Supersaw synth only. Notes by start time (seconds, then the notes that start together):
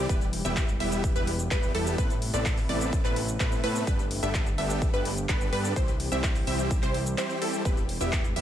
0.09 G3 B3 E4 B4
0.45 G3 B3 E4 G4 E5
0.80 G3 B3 E4 G4 E5
1.16 G3 B3 E4 G4 B4
1.51 G3 B3 E4 G4 B4
1.75 G3 B3 E4 G4 A4
1.98 B3 C4
2.34 B3 C4 E4 A4 D5
2.69 B3 C4 E4 A4 D5
3.05 B3 C4 E4 A4 B4
3.40 B3 C4 E4 A4 B4
3.64 B3 C4 E4 A4 B4
3.87 B3 D4 G4 A4 B4
4.23 B3 D4 G4 A4 E5
4.58 B3 D4 G4 A4 E5
4.94 B3 D4 G4 A4 B4
5.29 B3 D4 G4 A4 B4
5.53 B3 D4 G4 A4 B4
5.76 G3 E4 G4
6.12 G3 C4 E4 G4 E5
6.47 G3 C4 E4 G4 E5
6.83 G3 C4 E4 G4 C5
7.18 G3 C4 E4 G4 C5
7.42 G3 C4 E4 G4 A4
7.65 G3 B3 G4 B4
8.01 G3 B3 E4 G4 E5
8.36 G3 B3 E4 G4 E5